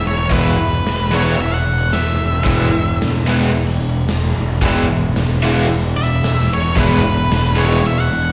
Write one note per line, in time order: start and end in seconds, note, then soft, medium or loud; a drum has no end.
0.02 0.28 E1 medium
0.07 0.32 C#5 medium
0.30 0.55 E1 medium
0.30 0.52 E3 loud
0.30 0.53 G#3 medium
0.30 0.53 B3 medium
0.30 0.54 E4 loud
0.30 1.11 B4 medium
0.30 kick loud
0.30 open hi-hat medium
0.56 0.82 E1 medium
0.82 1.34 E1 medium
0.82 open hi-hat medium
0.87 snare loud
1.11 1.33 E3 medium
1.11 1.34 G#3 medium
1.11 1.34 B3 medium
1.11 1.34 E4 loud
1.11 1.40 C#5 medium
1.38 1.63 E1 medium
1.38 1.54 E5 medium
1.38 open hi-hat medium
1.54 1.92 F#5 medium
1.64 1.90 E1 medium
1.92 2.18 E1 medium
1.92 2.97 E5 loud
1.92 snare loud
1.92 open hi-hat medium
2.20 2.45 E1 medium
2.44 2.71 E1 loud
2.44 2.67 E3 medium
2.44 2.67 G#3 loud
2.44 2.68 B3 medium
2.44 2.68 E4 loud
2.44 kick loud
2.44 open hi-hat medium
2.73 2.98 E1 medium
3.00 3.50 E1 medium
3.00 snare loud
3.00 open hi-hat medium
3.26 3.48 E3 medium
3.26 3.49 G#3 loud
3.26 3.49 B3 medium
3.26 3.50 E4 loud
3.54 3.79 E1 medium
3.54 open hi-hat medium
3.81 4.06 E1 medium
4.07 4.32 E1 medium
4.07 snare loud
4.07 open hi-hat medium
4.24 snare soft
4.35 4.60 E1 medium
4.62 4.87 E1 loud
4.62 4.83 E3 loud
4.62 4.84 G#3 loud
4.62 4.84 B3 loud
4.62 4.85 E4 loud
4.62 kick loud
4.62 open hi-hat medium
4.88 5.12 E1 medium
5.13 5.64 E1 medium
5.13 snare loud
5.13 open hi-hat medium
5.42 5.64 E3 loud
5.42 5.65 G#3 loud
5.42 5.65 B3 medium
5.42 5.65 E4 loud
5.69 5.94 E1 medium
5.69 open hi-hat soft
5.96 6.21 E1 medium
5.96 6.49 E5 loud
6.23 6.48 E1 medium
6.23 snare medium
6.23 open hi-hat medium
6.38 snare soft
6.50 6.75 E1 medium
6.50 6.78 C#5 medium
6.76 7.02 E1 loud
6.76 6.98 E3 loud
6.76 6.98 G#3 loud
6.76 6.99 B3 loud
6.76 6.99 E4 loud
6.76 7.56 B4 loud
6.76 kick loud
6.76 open hi-hat medium
7.03 7.29 E1 medium
7.30 7.80 E1 medium
7.30 snare loud
7.30 open hi-hat medium
7.56 7.78 E3 medium
7.56 7.78 G#3 loud
7.56 7.78 B3 loud
7.56 7.79 E4 medium
7.56 7.84 C#5 medium
7.84 8.09 E1 medium
7.84 8.01 E5 medium
7.84 open hi-hat medium
8.01 8.32 F#5 medium
8.11 8.32 E1 medium